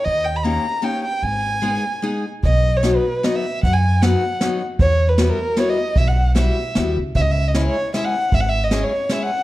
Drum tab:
HH |------|------|x-x-x-|x-x-x-|
SD |------|------|--o-o-|--o-o-|
BD |------|------|o-----|o-----|

HH |x-x-x-|x-x-x-|x-x-x-|x-x-x-|
SD |--o-o-|--o-o-|--o-o-|--o-o-|
BD |o-----|o-----|o-----|o-----|